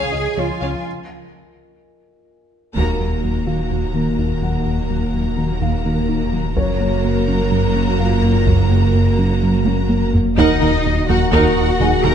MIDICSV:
0, 0, Header, 1, 13, 480
1, 0, Start_track
1, 0, Key_signature, -6, "minor"
1, 0, Tempo, 476190
1, 860, Time_signature, 4, 2, 24, 8
1, 12245, End_track
2, 0, Start_track
2, 0, Title_t, "Violin section"
2, 0, Program_c, 0, 48
2, 0, Note_on_c, 0, 80, 59
2, 862, Note_off_c, 0, 80, 0
2, 10463, Note_on_c, 0, 78, 73
2, 10685, Note_off_c, 0, 78, 0
2, 10700, Note_on_c, 0, 78, 50
2, 10781, Note_off_c, 0, 78, 0
2, 11183, Note_on_c, 0, 78, 51
2, 11263, Note_off_c, 0, 78, 0
2, 11419, Note_on_c, 0, 78, 68
2, 11642, Note_off_c, 0, 78, 0
2, 11899, Note_on_c, 0, 75, 58
2, 11979, Note_off_c, 0, 75, 0
2, 12145, Note_on_c, 0, 78, 48
2, 12225, Note_off_c, 0, 78, 0
2, 12245, End_track
3, 0, Start_track
3, 0, Title_t, "Felt piano"
3, 0, Program_c, 1, 0
3, 0, Control_c, 1, 64, 127
3, 0, Note_on_c, 1, 65, 38
3, 0, Note_on_c, 1, 70, 40
3, 0, Note_on_c, 1, 80, 48
3, 0, Note_on_c, 1, 82, 55
3, 122, Note_on_c, 1, 75, 33
3, 810, Note_off_c, 1, 75, 0
3, 814, Note_off_c, 1, 80, 0
3, 879, Control_c, 1, 64, 0
3, 887, Note_off_c, 1, 65, 0
3, 887, Note_off_c, 1, 82, 0
3, 888, Note_off_c, 1, 70, 0
3, 1024, Control_c, 1, 64, 127
3, 2800, Control_c, 1, 64, 0
3, 2992, Control_c, 1, 64, 127
3, 3488, Note_on_c, 1, 77, 30
3, 3492, Note_on_c, 1, 66, 28
3, 4457, Note_on_c, 1, 78, 31
3, 4894, Note_off_c, 1, 77, 0
3, 4895, Note_off_c, 1, 66, 0
3, 5661, Note_on_c, 1, 77, 35
3, 5858, Note_off_c, 1, 78, 0
3, 6619, Note_on_c, 1, 73, 55
3, 6641, Control_c, 1, 64, 0
3, 6773, Control_c, 1, 64, 127
3, 7060, Note_off_c, 1, 77, 0
3, 8019, Note_off_c, 1, 73, 0
3, 8052, Note_on_c, 1, 77, 39
3, 8061, Note_on_c, 1, 65, 33
3, 9455, Note_off_c, 1, 77, 0
3, 9460, Note_off_c, 1, 65, 0
3, 10480, Control_c, 1, 64, 0
3, 10671, Control_c, 1, 64, 127
3, 10686, Note_on_c, 1, 82, 48
3, 11895, Note_on_c, 1, 68, 38
3, 11899, Note_on_c, 1, 80, 40
3, 12092, Note_off_c, 1, 82, 0
3, 12245, Note_off_c, 1, 68, 0
3, 12245, Note_off_c, 1, 80, 0
3, 12245, End_track
4, 0, Start_track
4, 0, Title_t, "Violin section"
4, 0, Program_c, 2, 48
4, 0, Note_on_c, 2, 73, 62
4, 0, Note_on_c, 2, 77, 63
4, 122, Note_off_c, 2, 77, 0
4, 123, Note_off_c, 2, 73, 0
4, 371, Note_on_c, 2, 73, 42
4, 376, Note_off_c, 2, 73, 0
4, 376, Note_on_c, 2, 73, 40
4, 457, Note_off_c, 2, 73, 0
4, 615, Note_on_c, 2, 77, 41
4, 617, Note_on_c, 2, 73, 38
4, 695, Note_off_c, 2, 77, 0
4, 697, Note_off_c, 2, 73, 0
4, 2778, Note_on_c, 2, 82, 51
4, 2781, Note_on_c, 2, 70, 50
4, 6578, Note_off_c, 2, 82, 0
4, 6580, Note_off_c, 2, 70, 0
4, 6608, Note_on_c, 2, 82, 61
4, 6609, Note_on_c, 2, 70, 57
4, 10212, Note_off_c, 2, 82, 0
4, 10213, Note_off_c, 2, 70, 0
4, 10464, Note_on_c, 2, 75, 77
4, 11141, Note_off_c, 2, 75, 0
4, 11184, Note_on_c, 2, 78, 65
4, 11401, Note_off_c, 2, 78, 0
4, 11413, Note_on_c, 2, 78, 74
4, 12122, Note_off_c, 2, 78, 0
4, 12129, Note_on_c, 2, 82, 72
4, 12245, Note_off_c, 2, 82, 0
4, 12245, End_track
5, 0, Start_track
5, 0, Title_t, "Cello section"
5, 0, Program_c, 3, 48
5, 0, Note_on_c, 3, 68, 68
5, 370, Note_off_c, 3, 68, 0
5, 382, Note_on_c, 3, 65, 63
5, 861, Note_off_c, 3, 65, 0
5, 2776, Note_on_c, 3, 39, 57
5, 6578, Note_off_c, 3, 39, 0
5, 6621, Note_on_c, 3, 42, 68
5, 10258, Note_off_c, 3, 42, 0
5, 10457, Note_on_c, 3, 63, 83
5, 11138, Note_off_c, 3, 63, 0
5, 11176, Note_on_c, 3, 66, 78
5, 11406, Note_off_c, 3, 66, 0
5, 11418, Note_on_c, 3, 66, 84
5, 12124, Note_off_c, 3, 66, 0
5, 12140, Note_on_c, 3, 70, 84
5, 12245, Note_off_c, 3, 70, 0
5, 12245, End_track
6, 0, Start_track
6, 0, Title_t, "Viola section"
6, 0, Program_c, 4, 48
6, 374, Note_on_c, 4, 61, 40
6, 454, Note_off_c, 4, 61, 0
6, 617, Note_on_c, 4, 61, 42
6, 698, Note_off_c, 4, 61, 0
6, 2772, Note_on_c, 4, 58, 54
6, 2772, Note_on_c, 4, 66, 51
6, 6575, Note_off_c, 4, 66, 0
6, 6576, Note_off_c, 4, 58, 0
6, 6612, Note_on_c, 4, 58, 56
6, 6613, Note_on_c, 4, 66, 57
6, 10214, Note_off_c, 4, 58, 0
6, 10214, Note_off_c, 4, 66, 0
6, 10457, Note_on_c, 4, 70, 66
6, 10459, Note_on_c, 4, 63, 74
6, 10679, Note_off_c, 4, 63, 0
6, 10679, Note_off_c, 4, 70, 0
6, 10691, Note_on_c, 4, 70, 58
6, 10692, Note_on_c, 4, 63, 50
6, 10771, Note_off_c, 4, 70, 0
6, 10772, Note_off_c, 4, 63, 0
6, 11176, Note_on_c, 4, 70, 53
6, 11179, Note_on_c, 4, 63, 56
6, 11257, Note_off_c, 4, 70, 0
6, 11260, Note_off_c, 4, 63, 0
6, 11416, Note_on_c, 4, 70, 86
6, 11418, Note_on_c, 4, 63, 83
6, 11641, Note_off_c, 4, 70, 0
6, 11642, Note_off_c, 4, 63, 0
6, 11894, Note_on_c, 4, 66, 47
6, 11895, Note_on_c, 4, 63, 52
6, 11974, Note_off_c, 4, 66, 0
6, 11976, Note_off_c, 4, 63, 0
6, 12140, Note_on_c, 4, 63, 61
6, 12143, Note_on_c, 4, 70, 64
6, 12221, Note_off_c, 4, 63, 0
6, 12224, Note_off_c, 4, 70, 0
6, 12245, End_track
7, 0, Start_track
7, 0, Title_t, "French horn section"
7, 0, Program_c, 5, 60
7, 10449, Note_on_c, 5, 58, 69
7, 10451, Note_on_c, 5, 66, 78
7, 12245, Note_off_c, 5, 58, 0
7, 12245, Note_off_c, 5, 66, 0
7, 12245, End_track
8, 0, Start_track
8, 0, Title_t, "Synth arpeggio sound"
8, 0, Program_c, 6, 84
8, 374, Note_on_c, 6, 53, 52
8, 520, Note_off_c, 6, 53, 0
8, 622, Note_on_c, 6, 53, 51
8, 766, Note_off_c, 6, 53, 0
8, 2785, Note_on_c, 6, 51, 63
8, 2927, Note_off_c, 6, 51, 0
8, 3024, Note_on_c, 6, 54, 48
8, 3167, Note_off_c, 6, 54, 0
8, 3263, Note_on_c, 6, 54, 49
8, 3406, Note_off_c, 6, 54, 0
8, 3503, Note_on_c, 6, 58, 55
8, 3646, Note_off_c, 6, 58, 0
8, 3745, Note_on_c, 6, 51, 68
8, 3888, Note_off_c, 6, 51, 0
8, 3990, Note_on_c, 6, 58, 50
8, 4131, Note_off_c, 6, 58, 0
8, 4220, Note_on_c, 6, 63, 52
8, 4364, Note_off_c, 6, 63, 0
8, 4462, Note_on_c, 6, 54, 48
8, 4605, Note_off_c, 6, 54, 0
8, 4701, Note_on_c, 6, 51, 70
8, 4845, Note_off_c, 6, 51, 0
8, 4942, Note_on_c, 6, 54, 50
8, 5085, Note_off_c, 6, 54, 0
8, 5183, Note_on_c, 6, 54, 52
8, 5326, Note_off_c, 6, 54, 0
8, 5420, Note_on_c, 6, 58, 55
8, 5564, Note_off_c, 6, 58, 0
8, 5658, Note_on_c, 6, 51, 73
8, 5802, Note_off_c, 6, 51, 0
8, 5901, Note_on_c, 6, 58, 53
8, 6044, Note_off_c, 6, 58, 0
8, 6138, Note_on_c, 6, 63, 53
8, 6282, Note_off_c, 6, 63, 0
8, 6378, Note_on_c, 6, 54, 51
8, 6522, Note_off_c, 6, 54, 0
8, 6618, Note_on_c, 6, 54, 75
8, 6763, Note_off_c, 6, 54, 0
8, 6857, Note_on_c, 6, 58, 53
8, 7002, Note_off_c, 6, 58, 0
8, 7098, Note_on_c, 6, 58, 58
8, 7243, Note_off_c, 6, 58, 0
8, 7335, Note_on_c, 6, 61, 58
8, 7480, Note_off_c, 6, 61, 0
8, 7575, Note_on_c, 6, 54, 74
8, 7721, Note_off_c, 6, 54, 0
8, 7817, Note_on_c, 6, 61, 56
8, 7962, Note_off_c, 6, 61, 0
8, 8056, Note_on_c, 6, 66, 53
8, 8201, Note_off_c, 6, 66, 0
8, 8296, Note_on_c, 6, 58, 47
8, 8441, Note_off_c, 6, 58, 0
8, 8540, Note_on_c, 6, 54, 69
8, 8684, Note_off_c, 6, 54, 0
8, 8784, Note_on_c, 6, 58, 52
8, 8926, Note_off_c, 6, 58, 0
8, 9023, Note_on_c, 6, 58, 51
8, 9166, Note_off_c, 6, 58, 0
8, 9262, Note_on_c, 6, 61, 59
8, 9405, Note_off_c, 6, 61, 0
8, 9508, Note_on_c, 6, 54, 71
8, 9649, Note_off_c, 6, 54, 0
8, 9746, Note_on_c, 6, 61, 60
8, 9888, Note_off_c, 6, 61, 0
8, 9983, Note_on_c, 6, 66, 51
8, 10126, Note_off_c, 6, 66, 0
8, 10222, Note_on_c, 6, 58, 53
8, 10365, Note_off_c, 6, 58, 0
8, 10458, Note_on_c, 6, 51, 93
8, 10602, Note_off_c, 6, 51, 0
8, 10697, Note_on_c, 6, 63, 69
8, 10841, Note_off_c, 6, 63, 0
8, 11176, Note_on_c, 6, 54, 74
8, 11321, Note_off_c, 6, 54, 0
8, 11420, Note_on_c, 6, 51, 92
8, 11564, Note_off_c, 6, 51, 0
8, 11901, Note_on_c, 6, 54, 66
8, 12045, Note_off_c, 6, 54, 0
8, 12142, Note_on_c, 6, 54, 68
8, 12245, Note_off_c, 6, 54, 0
8, 12245, End_track
9, 0, Start_track
9, 0, Title_t, "Analog synth bass"
9, 0, Program_c, 7, 38
9, 135, Note_on_c, 7, 37, 54
9, 280, Note_off_c, 7, 37, 0
9, 375, Note_on_c, 7, 37, 53
9, 521, Note_off_c, 7, 37, 0
9, 616, Note_on_c, 7, 37, 51
9, 761, Note_off_c, 7, 37, 0
9, 2778, Note_on_c, 7, 39, 86
9, 2922, Note_off_c, 7, 39, 0
9, 3026, Note_on_c, 7, 39, 50
9, 3168, Note_off_c, 7, 39, 0
9, 3269, Note_on_c, 7, 39, 44
9, 3410, Note_off_c, 7, 39, 0
9, 3500, Note_on_c, 7, 51, 49
9, 3644, Note_off_c, 7, 51, 0
9, 3736, Note_on_c, 7, 39, 62
9, 3881, Note_off_c, 7, 39, 0
9, 3974, Note_on_c, 7, 51, 52
9, 4119, Note_off_c, 7, 51, 0
9, 4214, Note_on_c, 7, 39, 54
9, 4360, Note_off_c, 7, 39, 0
9, 4452, Note_on_c, 7, 39, 52
9, 4598, Note_off_c, 7, 39, 0
9, 4692, Note_on_c, 7, 39, 67
9, 4839, Note_off_c, 7, 39, 0
9, 4933, Note_on_c, 7, 39, 55
9, 5079, Note_off_c, 7, 39, 0
9, 5178, Note_on_c, 7, 39, 50
9, 5322, Note_off_c, 7, 39, 0
9, 5417, Note_on_c, 7, 51, 51
9, 5562, Note_off_c, 7, 51, 0
9, 5650, Note_on_c, 7, 39, 71
9, 5797, Note_off_c, 7, 39, 0
9, 5897, Note_on_c, 7, 51, 52
9, 6041, Note_off_c, 7, 51, 0
9, 6139, Note_on_c, 7, 39, 53
9, 6283, Note_off_c, 7, 39, 0
9, 6378, Note_on_c, 7, 39, 53
9, 6523, Note_off_c, 7, 39, 0
9, 6617, Note_on_c, 7, 42, 76
9, 6762, Note_off_c, 7, 42, 0
9, 6861, Note_on_c, 7, 42, 60
9, 7005, Note_off_c, 7, 42, 0
9, 7102, Note_on_c, 7, 42, 53
9, 7245, Note_off_c, 7, 42, 0
9, 7338, Note_on_c, 7, 54, 56
9, 7482, Note_off_c, 7, 54, 0
9, 7576, Note_on_c, 7, 42, 71
9, 7721, Note_off_c, 7, 42, 0
9, 7810, Note_on_c, 7, 54, 52
9, 7957, Note_off_c, 7, 54, 0
9, 8055, Note_on_c, 7, 42, 53
9, 8200, Note_off_c, 7, 42, 0
9, 8289, Note_on_c, 7, 42, 56
9, 8436, Note_off_c, 7, 42, 0
9, 8535, Note_on_c, 7, 42, 71
9, 8680, Note_off_c, 7, 42, 0
9, 8767, Note_on_c, 7, 42, 51
9, 8915, Note_off_c, 7, 42, 0
9, 9010, Note_on_c, 7, 42, 50
9, 9157, Note_off_c, 7, 42, 0
9, 9256, Note_on_c, 7, 54, 53
9, 9401, Note_off_c, 7, 54, 0
9, 9502, Note_on_c, 7, 42, 67
9, 9645, Note_off_c, 7, 42, 0
9, 9743, Note_on_c, 7, 54, 52
9, 9886, Note_off_c, 7, 54, 0
9, 9976, Note_on_c, 7, 42, 58
9, 10121, Note_off_c, 7, 42, 0
9, 10222, Note_on_c, 7, 42, 52
9, 10365, Note_off_c, 7, 42, 0
9, 10463, Note_on_c, 7, 39, 100
9, 10606, Note_off_c, 7, 39, 0
9, 10706, Note_on_c, 7, 39, 72
9, 10848, Note_off_c, 7, 39, 0
9, 10942, Note_on_c, 7, 39, 66
9, 11086, Note_off_c, 7, 39, 0
9, 11184, Note_on_c, 7, 39, 71
9, 11327, Note_off_c, 7, 39, 0
9, 11417, Note_on_c, 7, 39, 97
9, 11562, Note_off_c, 7, 39, 0
9, 11659, Note_on_c, 7, 39, 66
9, 11803, Note_off_c, 7, 39, 0
9, 11894, Note_on_c, 7, 39, 69
9, 12040, Note_off_c, 7, 39, 0
9, 12135, Note_on_c, 7, 39, 69
9, 12245, Note_off_c, 7, 39, 0
9, 12245, End_track
10, 0, Start_track
10, 0, Title_t, "Double bass section"
10, 0, Program_c, 8, 48
10, 2774, Note_on_c, 8, 39, 56
10, 6577, Note_off_c, 8, 39, 0
10, 6615, Note_on_c, 8, 30, 59
10, 10256, Note_off_c, 8, 30, 0
10, 10460, Note_on_c, 8, 39, 76
10, 10541, Note_off_c, 8, 39, 0
10, 10700, Note_on_c, 8, 39, 56
10, 10780, Note_off_c, 8, 39, 0
10, 11175, Note_on_c, 8, 39, 50
10, 11256, Note_off_c, 8, 39, 0
10, 11417, Note_on_c, 8, 39, 75
10, 11498, Note_off_c, 8, 39, 0
10, 11898, Note_on_c, 8, 39, 47
10, 11979, Note_off_c, 8, 39, 0
10, 12140, Note_on_c, 8, 39, 53
10, 12221, Note_off_c, 8, 39, 0
10, 12245, End_track
11, 0, Start_track
11, 0, Title_t, "Tuba"
11, 0, Program_c, 10, 58
11, 10464, Note_on_c, 10, 39, 76
11, 10559, Note_off_c, 10, 39, 0
11, 10701, Note_on_c, 10, 39, 59
11, 10796, Note_off_c, 10, 39, 0
11, 11184, Note_on_c, 10, 39, 48
11, 11279, Note_off_c, 10, 39, 0
11, 11422, Note_on_c, 10, 39, 75
11, 11517, Note_off_c, 10, 39, 0
11, 11905, Note_on_c, 10, 39, 52
11, 12000, Note_off_c, 10, 39, 0
11, 12148, Note_on_c, 10, 39, 58
11, 12242, Note_off_c, 10, 39, 0
11, 12245, End_track
12, 0, Start_track
12, 0, Title_t, "Sub bass"
12, 0, Program_c, 11, 38
12, 2774, Note_on_c, 11, 27, 54
12, 6615, Note_on_c, 11, 30, 58
12, 6631, Note_off_c, 11, 27, 0
12, 10452, Note_off_c, 11, 30, 0
12, 10458, Note_on_c, 11, 27, 77
12, 12245, Note_off_c, 11, 27, 0
12, 12245, End_track
13, 0, Start_track
13, 0, Title_t, "Taiko and cinematic ensemble drums"
13, 2781, Note_on_c, 9, 41, 43
13, 2881, Note_off_c, 9, 41, 0
13, 6616, Note_on_c, 9, 41, 59
13, 6717, Note_off_c, 9, 41, 0
13, 7336, Note_on_c, 9, 41, 34
13, 7437, Note_off_c, 9, 41, 0
13, 8535, Note_on_c, 9, 41, 79
13, 8636, Note_off_c, 9, 41, 0
13, 9735, Note_on_c, 9, 48, 75
13, 9836, Note_off_c, 9, 48, 0
13, 9978, Note_on_c, 9, 48, 68
13, 10078, Note_off_c, 9, 48, 0
13, 10219, Note_on_c, 9, 43, 79
13, 10320, Note_off_c, 9, 43, 0
13, 10458, Note_on_c, 9, 41, 97
13, 10559, Note_off_c, 9, 41, 0
13, 10702, Note_on_c, 9, 47, 53
13, 10803, Note_off_c, 9, 47, 0
13, 10942, Note_on_c, 9, 47, 61
13, 11043, Note_off_c, 9, 47, 0
13, 11420, Note_on_c, 9, 41, 83
13, 11521, Note_off_c, 9, 41, 0
13, 11899, Note_on_c, 9, 47, 59
13, 12000, Note_off_c, 9, 47, 0
13, 12140, Note_on_c, 9, 47, 51
13, 12240, Note_off_c, 9, 47, 0
13, 12245, End_track
0, 0, End_of_file